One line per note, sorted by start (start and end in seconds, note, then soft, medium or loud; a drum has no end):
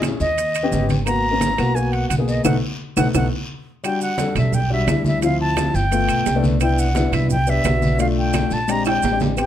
0.00 0.14 A#1 medium
0.00 0.23 C#4 medium
0.00 0.23 E4 medium
0.00 0.24 G#4 medium
0.00 high conga medium
0.00 high timbale medium
0.00 short guiro medium
0.00 claves medium
0.00 maracas medium
0.20 0.68 D#2 medium
0.20 0.86 D#5 medium
0.20 high conga soft
0.20 short guiro medium
0.20 maracas soft
0.37 high conga soft
0.37 high timbale medium
0.37 long guiro medium
0.37 maracas medium
0.54 high conga soft
0.54 high timbale medium
0.54 claves medium
0.54 maracas medium
0.63 0.93 B3 medium
0.63 0.94 C#4 medium
0.63 0.94 G4 loud
0.72 1.53 G#1 medium
0.72 high conga medium
0.72 low timbale medium
0.72 short guiro medium
0.72 maracas medium
0.89 high conga medium
0.89 high timbale medium
0.89 short guiro medium
0.89 maracas soft
1.06 1.25 A#3 medium
1.06 1.25 B3 medium
1.06 1.25 F#4 medium
1.06 1.77 A#5 loud
1.06 high conga soft
1.06 high timbale medium
1.06 long guiro medium
1.06 claves medium
1.06 maracas medium
1.31 1.50 A#3 medium
1.31 1.50 B3 medium
1.31 1.51 C#4 medium
1.41 high conga medium
1.41 high timbale medium
1.41 short guiro medium
1.41 maracas medium
1.58 2.07 B1 medium
1.58 1.70 A#3 medium
1.58 1.71 B3 medium
1.58 1.71 F#4 medium
1.58 high conga soft
1.58 high timbale medium
1.58 short guiro medium
1.58 claves medium
1.58 maracas soft
1.75 2.06 A#3 medium
1.75 2.06 B3 medium
1.75 2.06 F#4 medium
1.75 1.94 G#5 medium
1.75 high conga soft
1.75 long guiro medium
1.75 maracas medium
1.92 2.08 F#5 medium
1.92 high conga soft
1.92 high timbale medium
2.09 2.43 B1 medium
2.09 2.15 F#5 medium
2.09 high conga medium
2.09 high timbale medium
2.09 short guiro medium
2.09 claves medium
2.09 maracas medium
2.18 2.45 A#3 medium
2.18 2.43 B3 medium
2.18 2.45 G#4 medium
2.28 2.44 D#5 medium
2.28 short guiro medium
2.28 maracas soft
2.44 2.58 B1 medium
2.44 2.56 A3 loud
2.44 2.56 B3 medium
2.44 2.56 D#4 medium
2.44 2.56 F#5 medium
2.44 high conga medium
2.44 high timbale medium
2.44 long guiro medium
2.44 claves medium
2.44 maracas loud
2.97 3.10 B1 medium
2.97 3.08 A3 medium
2.97 3.08 B3 medium
2.97 3.08 D#4 medium
2.97 3.08 F#5 medium
2.97 high conga medium
2.97 high timbale medium
2.97 long guiro medium
2.97 claves loud
2.97 maracas medium
3.14 3.27 B1 medium
3.14 3.26 A3 medium
3.14 3.26 B3 medium
3.14 3.26 D#4 medium
3.14 3.26 F#5 medium
3.14 high conga loud
3.14 high timbale medium
3.14 long guiro medium
3.14 claves loud
3.14 maracas medium
3.84 4.08 G3 medium
3.84 4.08 D4 medium
3.84 4.09 F#4 medium
3.84 4.00 G5 medium
3.84 high conga soft
3.84 high timbale medium
3.84 long guiro medium
3.84 claves medium
3.84 maracas medium
4.01 4.34 F#5 medium
4.01 high conga soft
4.01 maracas medium
4.18 4.55 G3 medium
4.18 4.55 D4 medium
4.18 4.55 A4 medium
4.18 high conga medium
4.18 high timbale medium
4.18 low timbale medium
4.18 short guiro medium
4.18 maracas medium
4.35 4.84 B1 medium
4.35 4.56 E5 medium
4.35 high conga soft
4.35 low conga medium
4.35 high timbale medium
4.35 short guiro medium
4.35 claves medium
4.35 maracas soft
4.52 4.71 G5 medium
4.52 high conga soft
4.52 low conga medium
4.52 long guiro medium
4.52 maracas medium
4.70 4.82 G3 medium
4.70 4.83 D4 medium
4.70 4.83 F#4 medium
4.70 5.04 E5 medium
4.70 high conga soft
4.87 5.68 D2 medium
4.87 5.22 G3 medium
4.87 5.23 D4 medium
4.87 5.23 E4 medium
4.87 high conga medium
4.87 high timbale medium
4.87 low timbale medium
4.87 short guiro medium
4.87 claves medium
4.87 maracas medium
5.04 5.22 E5 medium
5.04 high conga medium
5.04 short guiro medium
5.04 maracas soft
5.22 5.78 F3 medium
5.22 5.78 C4 medium
5.22 5.79 E4 medium
5.22 5.39 F5 medium
5.22 high conga soft
5.22 high timbale medium
5.22 long guiro medium
5.22 maracas medium
5.39 5.77 A5 loud
5.39 high conga soft
5.57 high conga loud
5.57 high timbale loud
5.57 low timbale medium
5.57 short guiro medium
5.57 claves medium
5.57 maracas medium
5.74 6.06 G1 medium
5.74 6.44 G5 loud
5.74 short guiro medium
5.74 maracas soft
5.91 6.22 A3 medium
5.91 6.22 B3 medium
5.91 6.22 F4 medium
5.91 high conga soft
5.91 high timbale medium
5.91 long guiro medium
5.91 maracas medium
6.08 6.25 B1 medium
6.08 high conga soft
6.08 high timbale medium
6.08 claves medium
6.08 maracas medium
6.25 7.07 C2 medium
6.25 high conga soft
6.25 high timbale medium
6.25 low timbale medium
6.25 short guiro medium
6.25 maracas medium
6.34 6.53 A3 medium
6.34 6.53 B3 medium
6.34 6.54 D4 medium
6.43 high conga medium
6.43 short guiro medium
6.43 maracas soft
6.61 6.85 B3 medium
6.61 6.85 D4 medium
6.61 6.86 E4 medium
6.61 6.81 G5 medium
6.61 high timbale medium
6.61 long guiro medium
6.61 claves medium
6.61 maracas medium
6.77 7.15 F#5 medium
6.77 high conga soft
6.77 maracas medium
6.95 7.32 B3 medium
6.95 7.32 D4 medium
6.95 7.33 E4 medium
6.95 high conga medium
6.95 high timbale medium
6.95 low timbale medium
6.95 short guiro medium
6.95 maracas medium
7.12 7.61 C2 medium
7.12 7.30 E5 medium
7.12 high conga soft
7.12 low conga medium
7.12 high timbale medium
7.12 short guiro medium
7.12 claves medium
7.12 maracas soft
7.30 7.51 G5 medium
7.30 high conga soft
7.30 low conga medium
7.30 long guiro medium
7.30 maracas medium
7.47 7.59 B3 medium
7.47 7.60 D4 medium
7.47 7.60 G4 medium
7.47 8.01 E5 loud
7.47 high conga soft
7.47 maracas medium
7.64 8.46 B1 medium
7.64 7.99 B3 medium
7.64 7.98 D4 medium
7.64 8.00 F#4 medium
7.64 high conga medium
7.64 high timbale medium
7.64 low timbale medium
7.64 short guiro medium
7.64 claves medium
7.64 maracas medium
7.82 high conga medium
7.82 short guiro medium
7.82 maracas soft
7.99 8.54 A3 medium
7.99 8.55 D4 medium
7.99 8.55 F4 medium
7.99 8.07 F5 medium
7.99 high conga soft
7.99 high timbale medium
7.99 long guiro medium
7.99 maracas medium
8.17 8.55 G5 medium
8.17 high conga soft
8.33 high conga medium
8.33 high timbale medium
8.33 low timbale medium
8.33 short guiro medium
8.33 claves medium
8.33 maracas medium
8.50 9.00 A#1 medium
8.50 8.73 A5 loud
8.50 short guiro medium
8.50 maracas soft
8.68 8.98 G#3 medium
8.68 8.99 C4 medium
8.68 8.99 D4 medium
8.68 8.99 G4 medium
8.68 8.86 A#5 loud
8.68 high conga soft
8.68 high timbale medium
8.68 long guiro medium
8.68 maracas medium
8.85 9.19 G5 loud
8.85 high conga soft
8.85 high timbale loud
8.85 claves medium
8.85 maracas medium
9.03 9.46 A1 medium
9.03 high conga soft
9.03 low timbale medium
9.03 short guiro medium
9.03 maracas medium
9.11 9.30 G#3 medium
9.11 9.30 C4 medium
9.11 9.30 D4 medium
9.11 9.31 G4 medium
9.20 high conga medium
9.20 low timbale medium
9.20 short guiro medium
9.20 maracas soft
9.37 9.46 B3 medium
9.37 9.46 C4 medium
9.37 9.46 G4 medium
9.37 9.46 G5 medium
9.37 high conga soft
9.37 high timbale medium
9.37 long guiro medium
9.37 claves medium
9.37 maracas medium